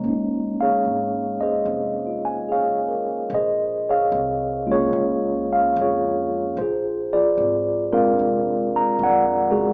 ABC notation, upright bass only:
X:1
M:4/4
L:1/8
Q:"Swing" 1/4=74
K:Bbm
V:1 name="Upright bass" clef=bass
B,,,2 A,,,2 F,,,3 z | B,,,2 C,,2 D,,2 F,,2 | B,,,2 A,,,2 F,,,2 F,,2 |]